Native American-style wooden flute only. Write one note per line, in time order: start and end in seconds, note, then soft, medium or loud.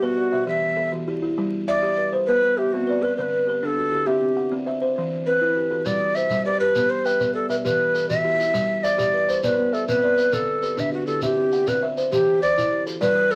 0.03 0.47 F#4 medium
0.48 0.90 E5 medium
1.68 2.10 D5 medium
2.27 2.59 B4 loud
2.57 2.74 G4 medium
2.72 3.04 F#4 medium
3.02 3.16 B4 medium
3.17 3.23 C5 medium
3.22 3.61 B4 medium
3.61 3.67 B4 medium
3.66 4.08 A4 medium
4.06 4.51 G4 medium
5.26 5.87 B4 medium
5.86 6.17 D5 loud
6.15 6.45 E5 loud
6.45 6.59 D5 medium
6.60 6.91 B4 loud
6.90 7.06 C5 loud
7.05 7.34 B4 loud
7.34 7.49 A4 medium
7.50 7.56 B4 medium
7.64 8.06 B4 loud
8.09 8.85 E5 loud
8.83 9.43 D5 loud
9.43 9.75 B4 loud
9.43 9.48 C5 medium
9.73 9.87 A4 medium
9.88 10.35 B4 medium
10.33 10.81 A4 medium
10.79 10.93 E5 medium
10.93 11.06 F#4 medium
11.07 11.21 A4 medium
11.24 11.70 G4 medium
11.68 11.83 B4 medium
12.12 12.40 G4 medium
12.42 12.83 D5 medium
13.01 13.33 B4 loud
13.31 13.35 A4 loud